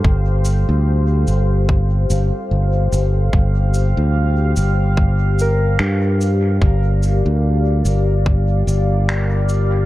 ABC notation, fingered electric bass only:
X:1
M:4/4
L:1/16
Q:"Swing 16ths" 1/4=73
K:Bb
V:1 name="Fingered electric bass" clef=bass
G,,,3 D,,3 G,,,4 G,,, z G,,,2 G,,,2 | G,,,3 D,,3 G,,,6 G,,4 | G,,,3 D,,3 G,,,4 G,,,6 |]